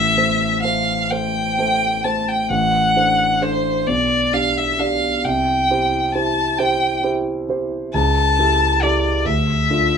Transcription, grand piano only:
Already playing: A1
0.17 A3 A4 C5
0.64 A3 A4 C5
1.11 A3 A4 C5
1.59 A3 A4 C5
2.05 A3 A4 C5
2.50 A1
2.96 D4 A4 C5
3.41 D4 A4 C5
3.87 B1
4.33 D4 G4 D5
4.79 D4 G4 D5
5.25 C2
5.70 E4 G4 C5
6.15 E4 G4 C5
6.59 E4 G4 C5
7.03 E4 G4 C5
7.49 E4 G4 C5
7.94 C#2
8.38 E4 G4 A4
8.82 E4 G4 A4
9.25 D2
9.70 D4 F4 A4

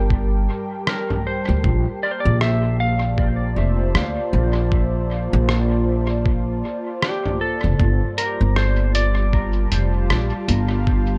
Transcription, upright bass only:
Already playing: G1
1.49 D2
1.64 A#1
2.25 A#1
3.56 F1
3.95 D2
4.33 A#1
5.33 A#1
7.64 F1
7.79 G1
8.41 G1
9.72 F1
10.10 A#1
10.48 G1

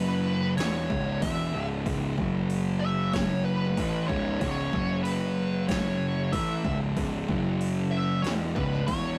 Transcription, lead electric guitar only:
Already playing: B4
0.57 C#5
1.22 E5
2.80 E5
3.13 C#5
3.44 B4
4.08 C#5
4.40 C#5
5.04 B4
5.68 C#5
6.32 E5
7.91 E5
8.22 C#5
8.55 B4
8.86 C#5

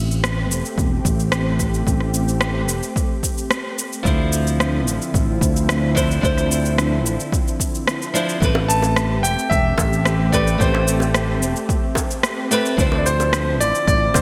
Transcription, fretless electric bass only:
Already playing: A1
0.50 E1
0.78 E1
1.05 A1
1.87 A1
2.68 E1
4.05 D2
4.86 A1
5.14 A1
5.41 D2
6.23 D2
7.05 A1
8.42 A1
9.24 E1
9.51 E1
9.78 A1
10.60 A1
11.42 E1
12.78 D2
13.60 A1
13.87 A1
14.14 D2

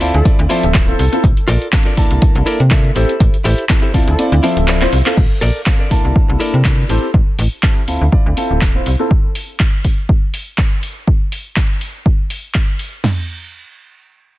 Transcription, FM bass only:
0.01 D2
0.14 D2
0.39 D2
0.64 D1
0.99 C2
1.24 A#1
1.48 A#1
1.97 C2
2.11 C2
2.22 C2
2.35 C2
2.60 C3
2.96 A1
3.20 A1
3.45 A1
3.94 D2
4.07 D2
4.32 D2
4.57 D1
4.93 C2
5.17 A#1
5.42 A#1
5.91 C2
6.05 C2
6.29 C2
6.54 C3
6.89 A1
7.14 A1
7.39 A1
7.88 D2
8.01 D2
8.26 D2
8.51 D1
8.87 C2

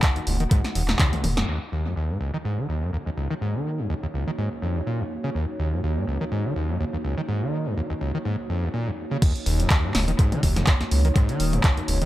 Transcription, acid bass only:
0.03 D#2
0.16 D#2
0.27 C#2
0.40 D#3
0.51 G#2
0.75 D#2
0.89 D#1
0.99 D#2
1.13 C#2
1.24 D#2
1.37 F#2
1.48 D#2
1.72 D#2
1.85 F#2
1.96 D#2
2.10 G#2
2.21 C#2
2.34 D#3
2.45 G#2
2.58 D#3
2.69 D#2
2.82 F#2
2.93 D#2
3.06 D#2
3.17 C#2
3.31 D#3
3.41 G#2
3.55 D#3
3.79 F#2
3.90 D#2
4.03 D#2
4.14 C#2
4.27 D#3
4.38 G#2
4.62 F2
4.76 D#2
4.87 A#2
5.00 D#2
5.24 C#3
5.35 D#2
5.59 D#2
5.73 F#2
5.83 D#2
5.97 G#2
6.07 C#2
6.21 D#3
6.32 G#2
6.45 D#3
6.56 D#2
6.69 F#2
6.80 D#2
6.93 D#2
7.04 C#2
7.18 D#3
7.28 G#2
7.42 D#3
7.66 F#2
7.77 D#2
7.90 D#2
8.01 C#2
8.14 D#3
8.25 G#2
8.49 F2
8.63 D#2
8.74 A#2
8.87 D#2
9.11 C#3
9.22 D#2
9.46 D#2
9.60 F#2
9.70 D#2
9.84 G#2
9.95 C#2
10.08 D#3
10.19 G#2
10.32 D#3
10.43 D#2
10.56 F#2
10.67 D#2
10.81 D#2
10.91 C#2
11.05 D#3
11.16 G#2
11.29 D#3
11.53 F#2
11.64 D#2
11.77 D#2
11.88 C#2
12.02 D#3

